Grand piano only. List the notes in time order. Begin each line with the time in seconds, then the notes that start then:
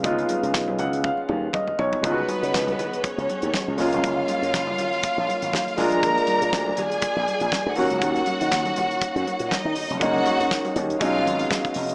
Already playing: G#3 B3 D#4 F4
0.03 G#3 B3 D#4 F4
0.79 F#5
1.04 F5
1.54 D#5
1.79 C#5
2.02 G#3 B3 D#4 F4
2.12 F#4
3.77 G#3 A#3 C#4 F4
5.77 G#3 A#3 D4 F4
7.76 F#3 A#3 C#4 F#4
10.00 G#3 A#3 C#4 D#4
11.00 F#3 G#3 C#4 D#4